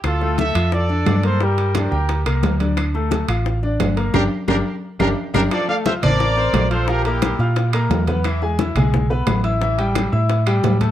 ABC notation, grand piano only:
X:1
M:4/4
L:1/8
Q:1/4=176
K:Dm
V:1 name="Grand piano"
z [A,A]2 [Ff]2 [Dd]2 [B,B] | [G,G]2 [Dd] [Gg]2 [B,B]2 [Dd]- | [Dd] [A,A]2 [Ff]2 [Dd]2 [B,B] | [DGB] z [DGB] z2 [DGB] z [DGB] |
[F,Ff] [A,Aa] [Fff'] [Cca]2 [Ccc']2 [Fff'] | [F,Ff] [B,Bb]2 [Fff']2 [B,Bb]2 [=B,=B=b] | [E,Ee] [^G,^G^g] [Eee'] [G,Gg]2 [=B,=B=b]2 [Eee'] | [E,Ee] [G,Gg]2 [Eee']2 [G,Gg]2 [A,Aa] |]